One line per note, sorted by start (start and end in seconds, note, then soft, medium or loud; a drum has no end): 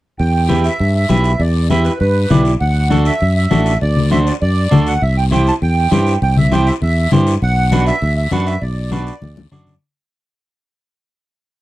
0.19 0.68 E2 medium
0.19 0.66 G5 medium
0.19 high conga soft
0.19 long guiro medium
0.49 0.70 E4 medium
0.49 0.70 G4 medium
0.49 0.71 B4 medium
0.49 high conga medium
0.49 short guiro medium
0.64 0.93 E5 medium
0.64 short guiro medium
0.79 1.04 G2 medium
0.79 high conga soft
0.79 long guiro medium
0.95 1.41 E5 medium
1.09 1.34 B1 medium
1.09 1.31 E4 medium
1.09 1.31 G4 medium
1.09 1.31 B4 medium
1.09 high conga medium
1.09 short guiro medium
1.24 short guiro medium
1.39 1.88 E2 medium
1.39 1.68 D5 medium
1.39 high conga soft
1.39 long guiro medium
1.70 1.91 E4 medium
1.70 1.92 G4 medium
1.70 1.92 B4 medium
1.70 1.84 E5 medium
1.70 high conga medium
1.70 short guiro medium
1.85 1.98 B4 medium
1.85 short guiro medium
2.00 2.25 G2 medium
2.00 2.42 B4 medium
2.00 high conga soft
2.00 long guiro medium
2.30 2.55 B1 medium
2.30 2.52 E4 medium
2.30 2.52 G4 soft
2.30 2.52 D5 medium
2.30 high conga medium
2.30 low conga medium
2.30 short guiro medium
2.45 short guiro medium
2.60 3.09 D2 medium
2.60 3.03 F#5 medium
2.60 high conga soft
2.60 long guiro medium
2.90 3.12 D4 medium
2.90 3.12 F#4 medium
2.90 3.12 A4 medium
2.90 high conga medium
2.90 short guiro medium
3.05 3.34 E5 medium
3.05 short guiro medium
3.21 3.46 F#2 medium
3.21 high conga soft
3.21 long guiro medium
3.36 3.78 E5 medium
3.51 3.75 A1 medium
3.51 3.72 D4 medium
3.51 3.72 F#4 medium
3.51 3.72 A4 medium
3.51 high conga medium
3.51 short guiro medium
3.66 short guiro medium
3.81 4.30 D2 medium
3.81 4.10 D5 medium
3.81 high conga soft
3.81 long guiro medium
3.97 low conga medium
4.11 4.32 D4 medium
4.11 4.32 F#4 medium
4.11 4.33 C5 medium
4.11 4.18 E5 medium
4.11 high conga medium
4.11 short guiro medium
4.26 4.33 D5 medium
4.26 short guiro medium
4.42 4.66 F#2 medium
4.42 4.88 D5 medium
4.42 high conga soft
4.42 long guiro medium
4.71 4.96 D2 medium
4.71 4.92 D4 medium
4.71 4.93 F#4 medium
4.71 4.93 A4 medium
4.71 high conga medium
4.71 low conga medium
4.71 short guiro medium
4.87 5.02 F#5 medium
4.87 short guiro medium
5.02 5.50 C2 medium
5.02 5.16 E5 medium
5.02 high conga soft
5.02 long guiro medium
5.17 5.24 G5 medium
5.31 5.53 E4 medium
5.31 5.53 G4 medium
5.31 5.53 C5 medium
5.31 5.46 G5 medium
5.31 high conga medium
5.31 short guiro medium
5.47 5.54 A5 loud
5.47 short guiro medium
5.62 5.86 E2 medium
5.62 6.18 G5 medium
5.62 high conga soft
5.62 long guiro medium
5.91 6.16 G2 medium
5.91 6.13 E4 medium
5.91 6.13 G4 medium
5.91 6.13 C5 medium
5.91 high conga medium
5.91 short guiro medium
6.07 short guiro medium
6.22 6.70 C2 medium
6.22 6.36 G5 medium
6.22 high conga soft
6.22 long guiro medium
6.37 6.53 E5 medium
6.37 low conga medium
6.52 6.73 E4 medium
6.52 6.73 G4 medium
6.52 6.73 C5 medium
6.52 6.68 G5 medium
6.52 high conga medium
6.52 short guiro medium
6.67 6.74 E5 medium
6.67 short guiro medium
6.82 7.06 E2 medium
6.82 7.10 E5 medium
6.82 high conga soft
6.82 long guiro medium
7.12 7.36 G2 medium
7.12 7.33 E4 medium
7.12 7.33 G4 medium
7.12 7.33 C5 medium
7.12 high conga medium
7.12 low conga medium
7.12 short guiro medium
7.27 short guiro medium
7.42 7.90 B1 medium
7.42 7.84 F#5 loud
7.42 high conga soft
7.42 long guiro medium
7.72 7.93 D4 medium
7.72 7.93 F#4 medium
7.72 7.93 B4 medium
7.72 high conga medium
7.72 short guiro medium
7.87 8.15 E5 medium
7.87 short guiro medium
8.02 8.26 D2 medium
8.02 high conga soft
8.02 long guiro medium
8.17 8.31 E5 medium
8.31 8.56 F#2 medium
8.31 8.53 D4 medium
8.31 8.53 F#4 medium
8.31 8.53 B4 medium
8.31 8.47 F#5 medium
8.31 high conga medium
8.31 short guiro medium
8.47 8.62 E5 medium
8.47 short guiro medium
8.61 9.10 B1 medium
8.61 9.48 D5 medium
8.61 high conga soft
8.61 long guiro medium
8.92 9.13 D4 medium
8.92 9.13 F#4 medium
8.92 9.13 B4 medium
8.92 high conga medium
8.92 short guiro medium
9.07 short guiro medium
9.22 9.46 D2 medium
9.22 high conga medium
9.22 long guiro medium
9.37 high conga loud
9.52 9.76 F#2 medium
9.52 9.73 D4 medium
9.52 9.73 F#4 medium
9.52 9.73 D5 loud
9.52 low conga loud
9.52 short guiro medium
9.67 low conga medium
9.67 short guiro medium